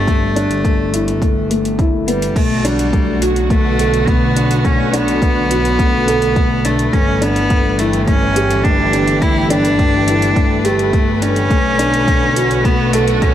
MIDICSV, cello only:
0, 0, Header, 1, 2, 480
1, 0, Start_track
1, 0, Key_signature, 2, "minor"
1, 0, Tempo, 571429
1, 64, Time_signature, 4, 2, 24, 8
1, 11207, End_track
2, 0, Start_track
2, 0, Title_t, "Cello"
2, 0, Program_c, 0, 42
2, 0, Note_on_c, 0, 57, 104
2, 1502, Note_off_c, 0, 57, 0
2, 1748, Note_on_c, 0, 55, 77
2, 1988, Note_on_c, 0, 57, 89
2, 2001, Note_off_c, 0, 55, 0
2, 2226, Note_on_c, 0, 55, 89
2, 2239, Note_off_c, 0, 57, 0
2, 2708, Note_on_c, 0, 54, 78
2, 2720, Note_off_c, 0, 55, 0
2, 2948, Note_on_c, 0, 57, 96
2, 2961, Note_off_c, 0, 54, 0
2, 3425, Note_on_c, 0, 59, 92
2, 3438, Note_off_c, 0, 57, 0
2, 3908, Note_on_c, 0, 61, 97
2, 3921, Note_off_c, 0, 59, 0
2, 4147, Note_on_c, 0, 59, 117
2, 4160, Note_off_c, 0, 61, 0
2, 5584, Note_on_c, 0, 57, 91
2, 5597, Note_off_c, 0, 59, 0
2, 5823, Note_on_c, 0, 61, 102
2, 5836, Note_off_c, 0, 57, 0
2, 6061, Note_on_c, 0, 59, 105
2, 6074, Note_off_c, 0, 61, 0
2, 6543, Note_on_c, 0, 57, 89
2, 6556, Note_off_c, 0, 59, 0
2, 6774, Note_off_c, 0, 57, 0
2, 6779, Note_on_c, 0, 61, 105
2, 7256, Note_on_c, 0, 62, 100
2, 7269, Note_off_c, 0, 61, 0
2, 7744, Note_on_c, 0, 64, 107
2, 7757, Note_off_c, 0, 62, 0
2, 7981, Note_on_c, 0, 62, 115
2, 7994, Note_off_c, 0, 64, 0
2, 8945, Note_on_c, 0, 57, 93
2, 8957, Note_off_c, 0, 62, 0
2, 9425, Note_on_c, 0, 61, 116
2, 9438, Note_off_c, 0, 57, 0
2, 10625, Note_on_c, 0, 59, 99
2, 10638, Note_off_c, 0, 61, 0
2, 10863, Note_on_c, 0, 57, 85
2, 10875, Note_off_c, 0, 59, 0
2, 11109, Note_on_c, 0, 61, 88
2, 11121, Note_off_c, 0, 57, 0
2, 11207, Note_off_c, 0, 61, 0
2, 11207, End_track
0, 0, End_of_file